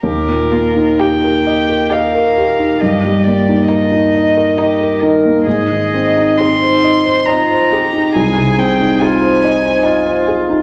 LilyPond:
<<
  \new Staff \with { instrumentName = "Violin" } { \time 3/4 \key ees \major \tempo 4 = 68 bes'4 g''4 f''4 | ees''8 d''8 ees''4. r8 | ees''4 c'''4 bes''4 | aes''8 g''8 aes''4. r8 | }
  \new Staff \with { instrumentName = "Grand piano" } { \time 3/4 \key ees \major ees,16 bes,16 bes16 ees'16 g'16 bes'16 ees''16 bes'16 ees''16 bes'16 g'16 ees'16 | g,16 g16 bes16 ees'16 bes'16 ees'16 ees''16 bes'16 ees''16 bes'16 ees'16 bes16 | aes,16 ees16 c'16 ees'16 aes'16 c''16 ees''16 c''16 ees''16 c''16 aes'16 ees'16 | c,16 c16 c'16 ees'16 aes'16 c''16 ees''16 c''16 ees''16 c''16 aes'16 ees'16 | }
  \new Staff \with { instrumentName = "Cello" } { \time 3/4 \key ees \major g'8 f'8 ees'8 g'8 bes'4 | g'4 ees'4 g'8 bes'8 | aes'4 ees'4 f'8 g'8 | aes'4 f'8 ees'8 f'4 | }
  \new Staff \with { instrumentName = "Violin" } { \time 3/4 \key ees \major r4 g'4 g'4 | r4 ees'4 ees'4 | r4 c'4 c'4 | r4 ees'4 ees'4 | }
>>